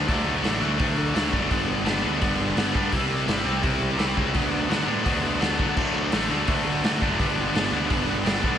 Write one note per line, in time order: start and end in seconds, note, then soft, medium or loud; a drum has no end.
0.07 0.25 D2 medium
0.07 0.42 D3 medium
0.07 0.43 F#3 loud
0.07 0.43 A3 loud
0.07 0.43 D4 loud
0.07 kick loud
0.07 open hi-hat medium
0.26 0.43 D2 medium
0.43 0.60 A1 medium
0.43 0.59 D3 medium
0.43 0.60 F#3 medium
0.43 0.60 A3 medium
0.43 0.61 D4 medium
0.43 snare loud
0.43 open hi-hat medium
0.60 0.78 D2 medium
0.60 0.77 D3 medium
0.60 0.77 F#3 medium
0.60 0.77 A3 loud
0.60 0.78 D4 medium
0.78 0.96 D2 loud
0.78 1.13 D3 loud
0.78 1.13 F#3 loud
0.78 1.14 A3 loud
0.78 1.14 D4 loud
0.78 kick loud
0.78 open hi-hat medium
0.97 1.14 D2 medium
1.14 1.32 D2 medium
1.14 1.30 D3 medium
1.14 1.30 F#3 medium
1.14 1.31 A3 loud
1.14 1.32 D4 loud
1.14 snare loud
1.14 open hi-hat medium
1.31 1.50 F#1 medium
1.31 1.49 D3 medium
1.31 1.49 F#3 medium
1.31 1.49 A3 medium
1.31 1.50 D4 medium
1.31 kick medium
1.50 1.67 G1 medium
1.50 1.83 G2 medium
1.50 1.83 D3 medium
1.50 1.85 G3 loud
1.50 1.85 B3 loud
1.50 1.84 D4 medium
1.50 kick loud
1.50 open hi-hat medium
1.68 1.85 G1 medium
1.85 2.03 G1 medium
1.85 2.02 G2 medium
1.85 2.02 D3 medium
1.85 2.03 G3 medium
1.85 2.03 B3 loud
1.85 2.03 D4 loud
1.85 snare loud
1.85 open hi-hat medium
2.03 2.21 D2 medium
2.03 2.20 G2 medium
2.03 2.20 D3 medium
2.03 2.20 G3 medium
2.03 2.21 B3 loud
2.03 2.21 D4 loud
2.21 2.38 G1 loud
2.21 2.56 G2 loud
2.21 2.56 D3 medium
2.21 2.57 G3 loud
2.21 2.57 B3 loud
2.21 2.57 D4 loud
2.21 kick loud
2.21 open hi-hat medium
2.39 2.56 G1 medium
2.56 2.73 G1 medium
2.56 2.73 G2 medium
2.56 2.74 D3 medium
2.56 2.74 G3 medium
2.56 2.74 B3 medium
2.56 2.74 D4 medium
2.56 snare loud
2.56 open hi-hat medium
2.74 2.92 G2 medium
2.74 2.92 D3 medium
2.74 2.92 G3 loud
2.74 2.92 B3 loud
2.74 2.92 D4 medium
2.74 kick medium
2.92 3.09 C2 medium
2.92 3.26 C3 loud
2.92 3.26 G3 loud
2.92 3.27 C4 loud
2.92 3.27 E4 loud
2.92 kick loud
2.92 open hi-hat medium
3.10 3.27 C2 loud
3.27 3.44 G1 medium
3.27 3.44 C3 medium
3.27 3.44 G3 medium
3.27 3.44 C4 loud
3.27 3.45 E4 loud
3.27 snare loud
3.27 open hi-hat medium
3.45 3.62 C2 medium
3.45 3.62 C3 medium
3.45 3.62 G3 medium
3.45 3.61 C4 medium
3.45 3.62 E4 medium
3.63 3.81 C2 loud
3.63 3.96 C3 loud
3.63 3.96 G3 loud
3.63 3.97 C4 medium
3.63 3.97 E4 loud
3.63 kick loud
3.63 open hi-hat medium
3.82 3.98 C2 loud
3.97 4.15 C2 medium
3.97 4.15 C3 medium
3.97 4.16 G3 medium
3.97 4.16 C4 medium
3.97 4.17 E4 medium
3.97 snare loud
3.97 open hi-hat medium
4.17 4.34 C#2 medium
4.17 4.33 C3 medium
4.17 4.33 G3 medium
4.17 4.33 C4 loud
4.17 4.33 E4 medium
4.17 kick medium
4.33 4.51 D2 medium
4.33 4.68 D3 loud
4.33 4.69 F#3 loud
4.33 4.68 B3 medium
4.33 4.69 D4 loud
4.33 kick loud
4.33 open hi-hat medium
4.51 4.68 D2 medium
4.69 4.86 D2 medium
4.69 4.86 D3 loud
4.69 4.86 F#3 medium
4.69 4.85 B3 medium
4.69 4.86 D4 medium
4.69 snare loud
4.69 open hi-hat medium
4.86 5.04 A2 medium
4.86 5.02 D3 medium
4.86 5.03 F#3 medium
4.86 5.03 B3 medium
4.86 5.04 D4 loud
5.04 5.23 D2 loud
5.04 5.39 D3 medium
5.04 5.39 F#3 medium
5.04 5.40 B3 loud
5.04 5.41 D4 loud
5.04 kick loud
5.04 open hi-hat medium
5.24 5.40 D2 medium
5.40 5.58 D2 medium
5.40 5.56 D3 medium
5.40 5.57 F#3 medium
5.40 5.57 B3 medium
5.40 5.58 D4 medium
5.40 snare loud
5.40 open hi-hat medium
5.58 5.75 D3 medium
5.58 5.76 D3 medium
5.58 5.75 F#3 medium
5.58 5.75 B3 medium
5.58 5.76 D4 medium
5.58 kick medium
5.76 5.93 D2 medium
5.76 6.11 D3 medium
5.76 6.12 F#3 medium
5.76 6.11 A3 loud
5.76 6.13 D4 loud
5.76 kick loud
5.76 crash loud
5.95 6.11 D2 medium
6.12 6.29 A1 medium
6.12 6.28 D3 medium
6.12 6.28 F#3 medium
6.12 6.28 A3 loud
6.12 6.29 D4 medium
6.12 snare loud
6.12 open hi-hat medium
6.29 6.46 D2 medium
6.29 6.46 D3 medium
6.29 6.46 F#3 medium
6.29 6.47 A3 loud
6.29 6.47 D4 loud
6.47 6.64 D2 loud
6.47 6.83 D3 loud
6.47 6.83 F#3 loud
6.47 6.83 A3 loud
6.47 6.84 D4 loud
6.47 kick loud
6.47 open hi-hat medium
6.66 6.82 D2 medium
6.83 7.00 D2 medium
6.83 7.00 D3 medium
6.83 7.01 F#3 loud
6.83 7.01 A3 medium
6.83 7.01 D4 medium
6.83 snare loud
6.83 open hi-hat medium
7.01 7.18 F#1 medium
7.01 7.18 D3 medium
7.01 7.18 F#3 medium
7.01 7.18 A3 medium
7.01 7.18 D4 medium
7.01 kick medium
7.19 7.35 G1 medium
7.19 7.53 G2 medium
7.19 7.53 D3 loud
7.19 7.54 G3 loud
7.19 7.54 B3 loud
7.19 7.54 D4 loud
7.19 kick loud
7.19 open hi-hat medium
7.38 7.53 G1 loud
7.55 7.71 G1 medium
7.55 7.70 G2 medium
7.55 7.71 D3 medium
7.55 7.72 G3 medium
7.55 7.72 B3 medium
7.55 7.72 D4 loud
7.55 snare loud
7.55 open hi-hat medium
7.72 7.88 D2 medium
7.72 7.88 G2 medium
7.72 7.88 D3 medium
7.72 7.89 G3 loud
7.72 7.89 B3 medium
7.72 7.89 D4 loud
7.90 8.06 G1 loud
7.90 8.23 G2 loud
7.90 8.23 D3 loud
7.90 8.24 G3 medium
7.90 8.24 B3 loud
7.90 8.24 D4 loud
7.90 kick loud
7.90 open hi-hat medium
8.07 8.24 G1 medium
8.24 8.42 G1 medium
8.24 8.40 G2 medium
8.24 8.41 D3 medium
8.24 8.41 G3 medium
8.24 8.41 B3 medium
8.24 8.41 D4 loud
8.24 snare loud
8.24 open hi-hat medium
8.42 8.58 B1 medium
8.42 8.58 G2 medium
8.42 8.58 D3 medium
8.42 8.58 G3 medium
8.42 8.58 B3 medium
8.42 8.58 D4 medium
8.42 kick medium